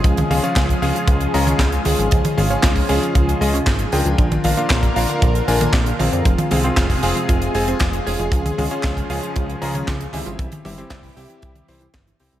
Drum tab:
HH |xxoxxxoxxxoxxxox|xxoxxooxxxoxxxox|xxoxxxoxxxoxxxox|xxoxxooxxxoxxxox|
CP |----x-------x---|----x-------x---|----x-------x---|----x-------x---|
SD |----o-------o---|----o-------o---|----o-------o---|----o-------o---|
T1 |-oo--------o--o-|-oo-------------|-oo--------o--o-|-oo-------------|
BD |o---oo--o---o---|o---oo--o---o---|o---oo--o---o---|o---oo--o---o---|

HH |xxoxxxoxxxoxxxox|xxoxxooxxxoxxxox|
CP |----x-------x---|----x-------x---|
SD |----o-------o---|----o-------o---|
T1 |-oo--------o--o-|-oo------o------|
BD |o---oo--o---o---|o---oo--o---o---|